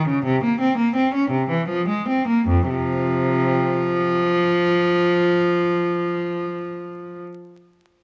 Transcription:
0.08 C#3
0.25 C3
0.44 A#3
0.61 C4
0.78 A#3
0.96 C4
1.14 C#4
1.31 C3
1.50 E3
1.69 F3
1.89 G#3
2.09 C4
2.28 A#3
2.48 F2
2.69 C3 F3

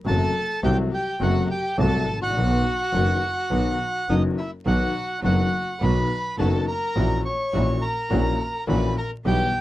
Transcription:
0.06 F#1 F#2 C3 F#3 A3 F#4 A4 A5
0.63 C2 C3 F#3 A3 F#4 G4 G5
0.92 G4 G5
1.21 F#1 F#2 C3 F#3 A3 F#4 F#5
1.50 G4 G5
1.78 C2 C3 F#3 A3 F#4 A4 A5
2.07 A1
2.15 G#1
2.22 A1 F#4 F#5
2.30 A#1
2.36 B1 B2 D#3 F#3 B3 F#4
2.93 F#1 F#2 D#3 F#3 B3 F#4
3.51 B1 B2 D#3 F#3 B3 F#4
4.08 F#1 F#2 D#3 F#3 B3 D#4 F#4 D#5
4.38 E4 E5
4.66 B1 B2 D#3 F#3 B3 D#4 F#4 F#5
5.24 F#1 F#2 D#3 F#3 B3 D#4 F#4 F#5
5.81 B1 B2 D#3 F#3 B3 D#4 F#4 B4 B5
6.38 F#1 F#2 D#3 F#3 B3 D#4 F#4 A4 A5
6.68 A#4 A#5
6.96 A#1 A#2 E3 A#3 C#4 E4 F#4
7.25 C#5 C#6
7.53 A#1 A#2 E3 A#3 C#4 E4 F#4
7.82 A#4 A#5
8.10 A#1 A#2 E3 A#3 C#4 E4 F#4
8.67 A#1 A#2 E3 A#3 C#4 E4 F#4 B4 B5
8.98 A#4 A#5
9.25 B1 B2 E3 G3 B3 E4 G4 G5

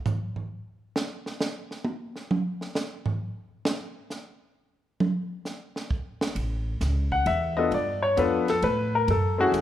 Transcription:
0.06 floor tom, hi-hat pedal
0.36 floor tom
0.96 snare
1.26 snare
1.41 snare, hi-hat pedal
1.71 snare
1.85 high tom
2.16 snare
2.31 mid tom
2.61 snare
2.75 snare, hi-hat pedal
3.06 floor tom
3.65 snare
4.10 snare, hi-hat pedal
5.00 mid tom
5.45 snare, hi-hat pedal
5.76 snare
5.91 kick
6.21 snare
6.35 A1, ride
6.81 C#2, snare, hi-hat pedal, ride
7.12 F#5, kick
7.26 E2 E5, ride
7.57 B3 D4 F4 A4 D#5
7.71 G2 D5, ride
8.02 C#5
8.17 F2 B3 D4 F4 A4 B4, hi-hat pedal, ride
8.48 A4, snare, ride
8.62 A2 B4, ride
8.95 A#4
9.08 F#2 A4, ride
9.38 A3 C#4 E4 F#4 G#4
9.52 E2, hi-hat pedal, ride

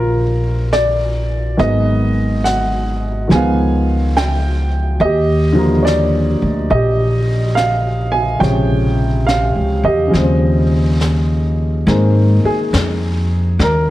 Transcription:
Already playing: A#1 F3 G3 A#3 D4 F4 A#4 C5 D5
0.73 D5, snare, hi-hat pedal
1.57 G#1 D#3 F#3 G#3 B3 D#5, brush sweep, snare
1.63 B4
2.44 F#5, snare, hi-hat pedal
3.28 C#2 D#3 F3 G#5, brush sweep, snare
3.32 G#3 B3 F5
4.17 G5, snare, hi-hat pedal
5.00 D#2 D#5, brush sweep
5.05 G4
5.52 D3 F3 G3
5.58 A#3
5.83 C#5 D5
5.87 snare, hi-hat pedal
6.42 D2
6.70 A#1 D#5, brush sweep
6.75 G4
7.55 F5, snare, hi-hat pedal
8.12 G#5
8.39 A#1 C3 C#3 F3 G#3 C#5 G5, brush sweep, snare
9.27 F5, snare, hi-hat pedal
9.55 C#2
9.83 E2 D#5
9.88 G4
10.07 C#3
10.11 D#2 F3 G3, brush sweep, snare
10.18 C4
11.01 snare, hi-hat pedal
11.87 G#2 D#3 G#3 A#3 C4, brush sweep, snare
12.44 G#4, muted upright bass stroke
12.73 F2, snare, hi-hat pedal
13.59 D#2 A#4, brush sweep, snare

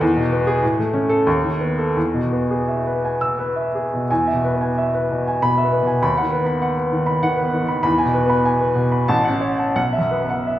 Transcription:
0.01 E2
0.16 B2
0.32 B3
0.47 G#4
0.62 A2
0.79 A3
0.94 C#4
1.09 A4
1.27 D#2
1.44 D#3
1.60 B3
1.79 A4
1.96 E2
2.14 B2
2.32 B3
2.51 G#4
2.68 E5
2.86 B4
3.05 G#5
3.21 E6
3.39 B4
3.56 E5
3.75 G#4
3.94 B2
4.10 E2 G#5
4.27 E5
4.34 B2
4.44 B4
4.56 B3
4.61 G#5
4.78 E5
4.94 B4
5.11 B2
5.27 G#5
5.42 B2 B5
5.58 E5
5.64 B3
5.72 B4
5.83 B2
5.87 G#5
6.02 D#2 B5
6.17 F#5
6.22 D#3
6.32 B4
6.44 B3 B5
6.62 F#5
6.77 B4
6.92 D#3
7.06 B5
7.23 D#3 F#5
7.37 B4
7.42 B3
7.53 D#3
7.63 D#3
7.68 B5
7.83 E2 B5
7.98 G#5
8.05 B2
8.14 B4
8.26 B3 B5
8.45 G#5
8.60 B4
8.75 B2
8.92 B5
9.08 A1 A5
9.24 F#5
9.29 C#4
9.41 C#5
9.58 A5
9.76 B1 F#5
9.93 E5
9.98 F#2
10.11 B4
10.23 B3
10.30 F#5
10.47 E5

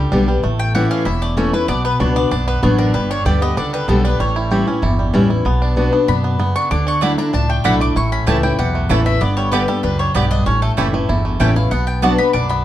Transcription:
Already playing: D3 G3 G4
0.12 B1 D3 G3 B3 D4 G4
0.28 G3 B3 G4
0.43 A1 A2 A3
0.59 G5
0.75 E3 A3 C#4 E4 G4 F#5
0.91 C#4 F5
1.05 E1 E2 E4 E5
1.22 A3 D5
1.37 E3 A3 C#4 E4 C#5
1.53 C#4 E4 B4
1.68 B1 B2 B3 D5
1.85 B3 B4
2.00 C#2 F#3 B3 D4 F#4 C#5
2.16 B3 D4 F#4 D5
2.31 B1 F#2 D4 D5
2.48 B3 B4
2.63 A1 F#3 B3 D4 F#4 C#5
2.78 D4 A#4
2.94 G1 G2 G3 B4
3.11 D4 C#5
3.25 D2 D3 G3 B3 G4 D5
3.41 B3 G4 D#5
3.57 C#2 D3 D4 D5
3.73 G3 B4
3.88 B1 D3 G3 B3 G4 A4
4.04 B3 D4 G4 B4
4.19 A1 A2 G3 C#5
4.36 E4
4.51 E3 G3 C#4 E4 G4
4.67 C#4 E4
4.82 G1 E2 E4
4.99 G3
5.14 A1 E3 G3 C#4 E4
5.29 C#4 E4
5.45 B1 B2 B3
5.62 D4
5.76 F#3 B3 D4 F#4
5.92 B3 D4 F#4
6.08 F#2 B2 D4 B5
6.24 B3
6.39 C#3 B3
6.56 D4 C#6
6.71 D2 D3 D4 D6
6.87 D4 C#6
7.01 F#3 A3 D4 E4 D5 F#5 B5
7.17 D4 E4 A#5
7.33 C#2 A2 D4 A5
7.49 A3 G5
7.64 B1 F#3 A3 D4 E4 D5 F#5 B5
7.80 A3 D4 E4 D6
7.96 A1 A2 E4 C#6
8.12 C#4 B5
8.27 C#2 E3 A3 C#4 E4 G4 C#5 A5
8.43 C#4 E4 G5
8.58 B1 E2 G4 F#5
8.75 A3
8.89 A1 E3 A3 C#4 E4 C#5 A5
9.05 A3 C#4 E4 E5
9.21 G1 G2 B3 D5
9.37 G3 C#5
9.52 D3 G3 B3 G4 B4 D5 G5
9.68 G3 B3 G4 A4
9.83 C#2 F#2 D4 B4
9.99 G3 C#5
10.14 B1 G2 B3 G4 D5 G5
10.31 D4 D#5
10.46 A1 A2 C#4 C#5
10.62 A3 A4
10.77 F#1 E3 A3 C#4 E4 G4 C#5 A5
10.93 A3 C#4 E4
11.09 G1 E2 E4
11.25 A3
11.40 A1 E3 A3 C#4 E4 C#5 G5 A5
11.56 C#4 E4 F5
11.71 B1 B2 B3 F#5
11.87 G5
12.02 F#3 B3 D4 F#4 D5 F#5 A5
12.18 B3 D4 F#4 B5
12.33 B1 F#2 D4 D6
12.49 B3 B5

